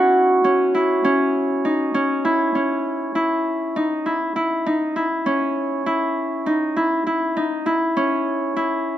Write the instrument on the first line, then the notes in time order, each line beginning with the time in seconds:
harp
Already playing: C#4 E4 F#4
0.44 C#4
0.74 E4
1.04 C#4
1.65 D#4
1.94 C#4
2.25 E4
2.55 C#4
3.15 E4
3.76 D#4
4.06 E4
4.36 E4
4.66 D#4
4.96 E4
5.26 C#4
5.86 E4
6.46 D#4
6.76 E4
7.07 E4
7.37 D#4
7.66 E4
7.97 C#4
8.56 E4